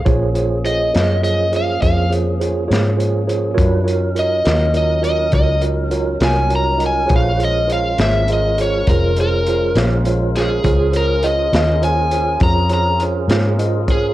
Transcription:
<<
  \new Staff \with { instrumentName = "Electric slide guitar" } { \time 12/8 \key bes \minor \tempo 4. = 68 r4 ees''4 ees''8 f''8 f''8 r2 r8 | r4 ees''4 ees''8 ees''8 ees''8 r4 aes''8 bes''8 aes''8 | f''8 ees''8 f''8 e''8 ees''8 des''8 bes'8 bes'4 r4 aes'8~ | aes'8 bes'8 ees''4 aes''4 bes''8 bes''8 r4. aes'8 | }
  \new Staff \with { instrumentName = "Tine electric piano" } { \time 12/8 \key bes \minor <f' aes' c'' des''>8 <f' aes' c'' des''>8 <f' aes' c'' des''>8 <f' aes' c'' des''>8 <f' aes' c'' des''>8 <f' aes' c'' des''>8 <f' aes' c'' des''>8 <f' aes' c'' des''>8 <f' aes' c'' des''>8 <f' aes' c'' des''>8 <f' aes' c'' des''>8 <f' aes' c'' des''>8 | <f' ges' bes' des''>8 <f' ges' bes' des''>8 <f' ges' bes' des''>8 <f' ges' bes' des''>8 <f' ges' bes' des''>8 <f' ges' bes' des''>8 <f' ges' bes' des''>8 <f' ges' bes' ees''>8 <f' ges' bes' des''>8 <f' ges' bes' des''>8 <f' ges' bes' des''>8 <f' ges' bes' ees''>8 | <f' aes' c'' des''>8 <f' aes' c'' des''>8 <f' aes' c'' des''>8 <f' aes' c'' des''>8 <f' aes' c'' ees''>8 <f' aes' c'' des''>8 <f' aes' c'' des''>8 <f' aes' c'' des''>8 <f' aes' c'' des''>8 <f' aes' c'' des''>8 <f' aes' c'' des''>8 <f' aes' c'' des''>8 | <f' aes' c'' des''>8 <f' aes' c'' des''>8 <f' aes' c'' des''>8 <f' aes' c'' des''>8 <f' aes' c'' des''>8 <f' aes' c'' des''>8 <f' aes' c'' des''>8 <f' aes' c'' des''>8 <f' aes' c'' des''>8 <f' aes' c'' des''>8 <f' aes' c'' ees''>8 <f' aes' c'' des''>8 | }
  \new Staff \with { instrumentName = "Tonewheel organ" } { \time 12/8 \key bes \minor <f bes des' aes'>1. | <g d' e' ces''>8 <ges des' ees' bes'>1~ <ges des' ees' bes'>4. | <a d' ges' ces''>8 <aes des' f' bes'>1~ <aes des' f' bes'>4. | <des' f' aes' bes'>1. | }
  \new Staff \with { instrumentName = "Fingered electric bass" } { \clef bass \time 12/8 \key bes \minor bes,,4. ges,4. f,4. aes,4. | ges,4. ees,4. des,4. c,4. | bes,,4. aes,,4. f,,4. bes,,4. | des,4. ees,4. f,4. aes,4. | }
  \new DrumStaff \with { instrumentName = "Drums" } \drummode { \time 12/8 <hh bd>8 hh8 hh8 <hh sn>8 hh8 hh8 <hh bd>8 hh8 hh8 <hh sn>8 hh8 hh8 | <hh bd>8 hh8 hh8 <hh sn>8 hh8 hh8 <hh bd>8 hh8 hh8 <hh sn>8 hh8 hh8 | <hh bd>8 hh8 hh8 <hh sn>8 hh8 hh8 <hh bd>8 hh8 hh8 <hh sn>8 hh8 <hh sn>8 | <hh bd>8 hh8 hh8 <hh sn>8 hh8 hh8 <hh bd>8 hh8 hh8 <hh sn>8 hh8 <hh bd>8 | }
>>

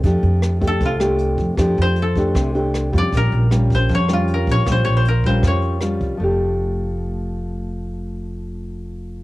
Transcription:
<<
  \new Staff \with { instrumentName = "Koto" } { \time 4/4 \key f \major \tempo 4 = 156 r4. a'8 f'8 r4. | r8 c''8 a'8 r2 d''8 | bes'8 r4 c''8 des''8 f'8 bes'8 des''8 | \tuplet 3/2 { c''8 des''8 c''8 } bes'8 c''8 des''4 r4 |
r1 | r1 | }
  \new Staff \with { instrumentName = "Nylon-string guitar" } { \time 4/4 \key f \major << { <a d' g'>4. <a d' g'>4 <a d' g'>4. | <a d' g'>4 r8 <a d' g'>4 <a d' g'>4 <g des' f'>8~ | <g des' f'>4 <g des' f'>4. <g des' f'>4. | <g des' f'>4 r8 <g des' f'>4. <g des' f'>4 |
<f a d' g'>1~ | <f a d' g'>1 | } \\ { f2 c2 | f2 c2 | bes,2 f2 | bes,2 f2 |
r1 | r1 | } >> }
  \new Staff \with { instrumentName = "Upright bass" } { \clef bass \time 4/4 \key f \major f,8 f,4. c,4. f,16 r16 | f,8 f,4. c,4. f,16 r16 | bes,,8 bes,,4. f,4. bes,,16 r16 | bes,,8 bes,,4. f,4. c,16 r16 |
f,,1~ | f,,1 | }
  \new DrumStaff \with { instrumentName = "Drums" } \drummode { \time 4/4 <hh bd>8 hh8 <hh ss>8 <hh bd>8 <hh bd>8 <hh ss>8 hh8 <hh bd>8 | <hh bd ss>8 hh8 hh8 <hh bd>8 <hh bd ss>8 hh8 <hh ss>8 <hh bd>8 | <hh bd>8 hh8 <hh ss>8 <hh bd>8 <hh bd>8 <hh ss>8 hh8 <hh bd>8 | <hh bd ss>8 hh8 hh8 <hh bd>8 <hh bd ss>8 hh8 <hh ss>8 <hh bd>8 |
r4 r4 r4 r4 | r4 r4 r4 r4 | }
>>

